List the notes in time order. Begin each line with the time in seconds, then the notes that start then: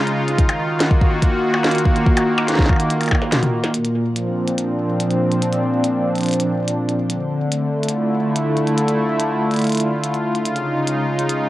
Already playing: C#3 G#3 D#4 F4
0.07 closed hi-hat
0.28 closed hi-hat
0.38 D#3, kick, closed hi-hat
0.49 closed hi-hat, percussion blips
0.61 F#4
0.77 A#3, snare, closed hi-hat
0.91 kick
1.01 kick
1.22 kick, closed hi-hat
1.54 percussion blips
1.64 snare, closed hi-hat
1.71 closed hi-hat
1.75 closed hi-hat
1.78 closed hi-hat
1.85 kick
1.96 closed hi-hat
2.06 kick
2.17 closed hi-hat, percussion blips
2.38 percussion blips
2.48 snare, closed hi-hat
2.52 snare
2.55 kick, snare
2.59 snare
2.62 snare
2.66 kick, snare, percussion blips
2.73 percussion blips
2.76 closed hi-hat, percussion blips
2.90 closed hi-hat
3.01 closed hi-hat, percussion blips
3.03 closed hi-hat
3.06 closed hi-hat, percussion blips
3.09 kick, snare, closed hi-hat, percussion blips
3.15 percussion blips
3.22 snare
3.32 snare, closed hi-hat, mid tom
3.43 closed hi-hat, mid tom
3.64 snare, closed hi-hat
3.74 A#2, closed hi-hat
3.85 closed hi-hat
4.09 F3
4.16 C4 D4, closed hi-hat
4.48 closed hi-hat
4.58 closed hi-hat
5.00 closed hi-hat
5.11 closed hi-hat
5.32 closed hi-hat
5.42 closed hi-hat
5.53 closed hi-hat
5.84 closed hi-hat
6.15 closed hi-hat
6.18 closed hi-hat
6.21 closed hi-hat
6.23 closed hi-hat
6.26 closed hi-hat
6.29 closed hi-hat
6.31 closed hi-hat
6.33 closed hi-hat
6.40 closed hi-hat
6.68 closed hi-hat
6.89 closed hi-hat
7.10 D3, closed hi-hat
7.44 A3
7.52 closed hi-hat
7.79 F4
7.83 E4, closed hi-hat
7.89 closed hi-hat
8.36 closed hi-hat
8.57 closed hi-hat
8.67 closed hi-hat
8.78 closed hi-hat
8.88 closed hi-hat
9.20 closed hi-hat
9.51 closed hi-hat
9.54 closed hi-hat
9.56 closed hi-hat
9.59 closed hi-hat
9.62 closed hi-hat
9.64 closed hi-hat
9.67 closed hi-hat
9.69 closed hi-hat
9.72 closed hi-hat
9.75 closed hi-hat
9.77 closed hi-hat
9.80 closed hi-hat
10.04 closed hi-hat
10.14 closed hi-hat
10.35 closed hi-hat
10.45 C#3, closed hi-hat
10.56 D#4, closed hi-hat
10.81 G#3
10.87 closed hi-hat
11.19 closed hi-hat
11.29 closed hi-hat